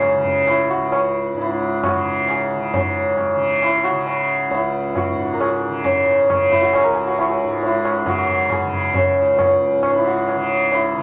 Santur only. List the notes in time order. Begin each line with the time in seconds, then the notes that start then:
Already playing: C#4 E4 F#4 G#4
0.48 E4
0.70 F#4
1.41 E4
1.86 F#4
2.30 G#4
2.75 C#4
3.64 E4
3.84 F#4
4.54 E4
4.97 F#4
5.34 A#4
5.40 G#4
5.84 C#4
6.51 E4
6.62 F#4
6.73 G#4
6.84 A#4
6.94 G#4
7.07 F#4
7.18 E4
7.30 G#4
7.66 E4
8.08 F#4
8.52 G#4
8.96 C#4
9.96 E4
10.07 F#4
10.74 E4